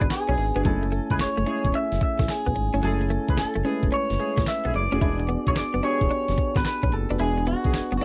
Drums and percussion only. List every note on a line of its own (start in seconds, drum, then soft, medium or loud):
0.01 kick loud
0.01 closed hi-hat medium
0.10 snare loud
0.10 clap medium
0.10 closed hi-hat medium
0.29 closed hi-hat medium
0.38 open hi-hat medium
0.56 closed hi-hat medium
0.65 kick loud
0.65 closed hi-hat medium
0.83 closed hi-hat soft
0.92 closed hi-hat medium
1.10 kick medium
1.10 closed hi-hat medium
1.19 snare loud
1.19 clap medium
1.19 closed hi-hat medium
1.38 closed hi-hat medium
1.47 closed hi-hat medium
1.65 kick medium
1.65 closed hi-hat medium
1.74 closed hi-hat medium
1.92 snare medium
1.92 closed hi-hat soft
2.01 kick medium
2.01 closed hi-hat medium
2.19 kick loud
2.19 snare medium
2.19 closed hi-hat medium
2.28 snare loud
2.28 clap medium
2.28 closed hi-hat medium
2.47 kick medium
2.47 closed hi-hat soft
2.56 closed hi-hat medium
2.74 closed hi-hat medium
2.83 closed hi-hat medium
3.01 closed hi-hat soft
3.10 closed hi-hat medium
3.28 kick medium
3.28 closed hi-hat soft
3.37 snare loud
3.37 clap medium
3.37 closed hi-hat medium
3.56 closed hi-hat medium
3.65 closed hi-hat medium
3.83 kick loud
3.83 closed hi-hat medium
3.92 closed hi-hat medium
4.10 snare medium
4.10 closed hi-hat medium
4.19 closed hi-hat medium
4.37 kick medium
4.37 snare medium
4.37 closed hi-hat medium
4.47 snare loud
4.47 clap medium
4.47 closed hi-hat medium
4.65 closed hi-hat medium
4.74 closed hi-hat medium
4.92 closed hi-hat medium
5.01 kick loud
5.01 closed hi-hat medium
5.20 closed hi-hat soft
5.29 closed hi-hat medium
5.46 kick medium
5.46 closed hi-hat medium
5.56 snare loud
5.56 clap loud
5.56 closed hi-hat medium
5.74 closed hi-hat medium
5.83 closed hi-hat medium
6.01 kick loud
6.01 closed hi-hat medium
6.11 closed hi-hat medium
6.28 snare medium
6.28 closed hi-hat soft
6.38 kick medium
6.38 closed hi-hat medium
6.56 kick medium
6.56 snare medium
6.56 closed hi-hat medium
6.65 snare loud
6.65 clap medium
6.65 closed hi-hat medium
6.83 kick medium
6.83 closed hi-hat soft
6.92 closed hi-hat medium
7.10 closed hi-hat medium
7.19 closed hi-hat medium
7.38 closed hi-hat soft
7.47 closed hi-hat medium
7.64 kick loud
7.64 closed hi-hat soft
7.74 snare loud
7.74 clap medium
7.74 closed hi-hat medium
7.92 closed hi-hat medium
8.01 open hi-hat medium